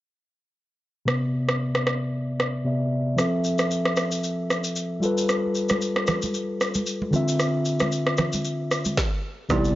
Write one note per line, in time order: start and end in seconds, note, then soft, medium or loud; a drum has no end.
1.05 2.61 C3 medium
1.05 2.62 B3 medium
1.05 2.63 D5 medium
1.05 cross-stick medium
1.10 2.64 E5 medium
1.49 cross-stick medium
1.75 cross-stick medium
1.87 cross-stick medium
2.40 cross-stick medium
2.65 3.18 C3 medium
2.65 3.18 B3 soft
2.65 3.19 D5 medium
2.65 3.19 E5 medium
3.16 4.98 F3 medium
3.16 4.99 C4 medium
3.16 4.99 A4 medium
3.16 cross-stick medium
3.16 shaker medium
3.21 5.00 E5 medium
3.44 shaker medium
3.58 cross-stick medium
3.58 shaker medium
3.71 shaker medium
3.85 cross-stick medium
3.96 cross-stick medium
3.96 shaker soft
4.12 shaker medium
4.24 shaker medium
4.50 cross-stick medium
4.50 shaker medium
4.64 shaker medium
4.76 shaker medium
5.00 7.08 G3 medium
5.00 7.09 F4 medium
5.00 7.10 A4 medium
5.00 shaker medium
5.05 7.11 B4 medium
5.18 shaker medium
5.29 cross-stick medium
5.29 shaker medium
5.55 shaker medium
5.69 cross-stick medium
5.69 high conga medium
5.69 shaker medium
5.82 shaker medium
5.96 cross-stick medium
6.07 cross-stick medium
6.07 low conga medium
6.07 shaker soft
6.22 high conga medium
6.22 shaker medium
6.34 shaker medium
6.61 cross-stick medium
6.61 shaker medium
6.75 high conga medium
6.75 shaker medium
6.86 shaker medium
7.02 high conga medium
7.11 8.93 D3 medium
7.11 8.93 C4 medium
7.11 8.94 F4 medium
7.11 high conga medium
7.11 low conga medium
7.11 shaker soft
7.16 8.95 E5 medium
7.28 shaker medium
7.40 cross-stick medium
7.40 shaker medium
7.65 shaker medium
7.80 cross-stick medium
7.80 high conga medium
7.80 shaker medium
7.92 shaker medium
8.07 cross-stick medium
8.18 cross-stick medium
8.18 low conga medium
8.18 shaker soft
8.33 high conga medium
8.33 shaker medium
8.45 shaker medium
8.71 cross-stick medium
8.71 shaker medium
8.85 high conga medium
8.85 shaker medium
8.97 kick loud
8.97 snare medium
9.49 9.75 C2 loud
9.49 9.75 C3 medium
9.49 9.75 B3 medium
9.49 9.57 D#4 medium
9.49 9.61 E4 medium
9.49 9.60 G4 medium
9.49 9.75 D5 medium
9.49 kick loud
9.49 cross-stick medium
9.49 low conga medium
9.49 shaker medium
9.57 9.75 E4 medium
9.65 shaker soft